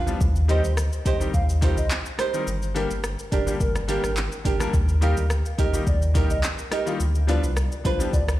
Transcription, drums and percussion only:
0.08 shaker
0.21 kick, shaker
0.36 shaker
0.49 closed hi-hat, shaker
0.64 shaker
0.77 cross-stick, shaker
0.93 shaker
1.06 kick, closed hi-hat, shaker
1.21 shaker
1.34 kick, shaker
1.49 shaker
1.62 kick, closed hi-hat, shaker
1.77 shaker
1.91 clap, shaker
2.06 shaker
2.19 cross-stick, closed hi-hat, shaker
2.34 shaker
2.47 shaker
2.62 shaker
2.76 closed hi-hat, shaker
2.91 shaker
3.04 cross-stick, shaker
3.19 shaker
3.32 kick, closed hi-hat, shaker
3.47 shaker
3.60 kick, shaker
3.76 cross-stick, shaker
3.89 closed hi-hat, shaker
4.04 cross-stick, shaker
4.17 clap, shaker
4.32 shaker
4.45 kick, closed hi-hat, shaker
4.60 cross-stick, shaker
4.74 kick, shaker
4.89 shaker
5.02 closed hi-hat, shaker
5.17 shaker
5.30 cross-stick, shaker
5.46 shaker
5.59 kick, closed hi-hat, shaker
5.74 shaker
5.87 kick, shaker
6.02 shaker
6.15 kick, closed hi-hat, shaker
6.30 shaker
6.43 clap, shaker
6.59 shaker
6.72 cross-stick, closed hi-hat, shaker
6.87 shaker
7.00 shaker
7.15 shaker
7.29 closed hi-hat, shaker
7.44 shaker
7.57 cross-stick, shaker
7.72 shaker
7.85 kick, closed hi-hat, shaker
8.00 shaker
8.13 kick, shaker
8.28 cross-stick, shaker

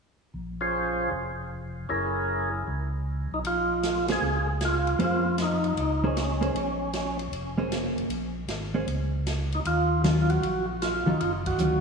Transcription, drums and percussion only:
3.45 ride
3.83 snare, hi-hat pedal, ride
4.08 snare, ride
4.61 snare, hi-hat pedal, ride
4.87 ride
4.99 ride
5.38 snare, hi-hat pedal, ride
5.64 ride
5.77 ride
6.17 snare, hi-hat pedal, ride
6.42 ride
6.56 ride
6.93 snare, hi-hat pedal, ride
7.19 ride
7.33 ride
7.72 snare, hi-hat pedal, ride
7.98 ride
8.10 ride
8.48 snare, hi-hat pedal, ride
8.88 ride
9.27 snare, hi-hat pedal, ride
9.52 ride
9.65 ride
10.04 snare, hi-hat pedal, ride
10.30 ride
10.43 ride
10.82 snare, hi-hat pedal, ride
11.21 ride
11.46 kick, ride
11.59 hi-hat pedal

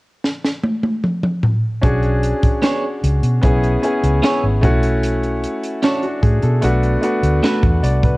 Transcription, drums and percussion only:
0.24 snare
0.44 snare
0.63 high tom
0.83 high tom
1.04 mid tom
1.23 mid tom
1.43 floor tom
1.83 kick, closed hi-hat
2.03 closed hi-hat
2.23 closed hi-hat
2.43 kick, closed hi-hat
2.63 snare, closed hi-hat
3.04 closed hi-hat
3.23 closed hi-hat
3.43 kick, closed hi-hat
3.63 closed hi-hat
3.83 closed hi-hat
4.04 closed hi-hat
4.23 snare, closed hi-hat
4.63 kick, closed hi-hat
4.83 closed hi-hat
5.03 closed hi-hat
5.23 closed hi-hat
5.44 closed hi-hat
5.63 closed hi-hat
5.83 snare, closed hi-hat
6.03 closed hi-hat
6.23 kick, closed hi-hat
6.42 closed hi-hat
6.62 closed hi-hat
6.83 closed hi-hat
7.03 closed hi-hat
7.23 closed hi-hat
7.44 snare, closed hi-hat
7.63 kick, closed hi-hat
7.84 closed hi-hat
8.03 kick, closed hi-hat

